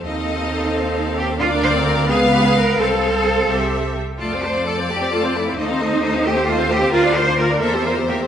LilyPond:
<<
  \new Staff \with { instrumentName = "Violin section" } { \time 6/8 \key f \major \tempo 4. = 87 f''2. | f''4. f''4. | f''4. e''4 r8 | a''16 f''16 a''16 f''16 a''16 f''16 a''16 f''16 a''16 f''16 a''16 f''16 |
ees''16 f''16 ees''16 f''16 ees''16 f''16 ees''16 f''16 ees''16 f''16 ees''16 f''16 | d''16 f''16 d''16 f''16 d''16 f''16 e''16 c''16 e''16 c''16 e''16 c''16 | }
  \new Staff \with { instrumentName = "Violin section" } { \time 6/8 \key f \major ees''4. c''4. | d''4. f''4. | c''2~ c''16 r8. | d''2. |
c''2.~ | c''4. c''4. | }
  \new Staff \with { instrumentName = "Cello section" } { \time 6/8 \key f \major ees'2~ ees'8 g'8 | f'8 c''8 bes'8 aes'8 g'16 aes'16 bes'8 | a'2~ a'8 r8 | f'8 c''8 a'8 g'8 f'8 e'8 |
ees'4. g'8 f'8 g'8 | f'8 c''8 bes'8 a'8 f'8 g'8 | }
  \new Staff \with { instrumentName = "Viola section" } { \time 6/8 \key f \major << { a'2. | bes'4. ces''4. | a'4. g'4 r8 | a'16 c''16 a'16 c''16 a'16 c''16 a'16 c''16 a'16 c''16 a'16 c''16 |
a'16 c''16 a'16 c''16 a'16 c''16 a'16 c''16 a'16 c''16 a'16 c''16 | bes'16 d''16 bes'16 d''16 bes'16 d''16 bes'16 g'16 bes'16 g'16 bes'16 g'16 | } \\ { c'2. | d'8. c'8. ces'4. | c'4. c'4 r8 | a16 c'16 a16 c'16 a16 c'16 a16 c'16 a16 c'16 a16 c'16 |
a16 c'16 a16 c'16 a16 c'16 a16 c'16 a16 c'16 a16 c'16 | f'16 d'16 f'16 d'16 f'16 d'16 bes16 c'16 bes16 c'16 bes16 c'16 | } >> }
  \new Staff \with { instrumentName = "Double bass section" } { \clef bass \time 6/8 \key f \major ees,2. | d,4. des,4. | c,4. c,4 r8 | f,2. |
ees,2. | d,4. e,4. | }
>>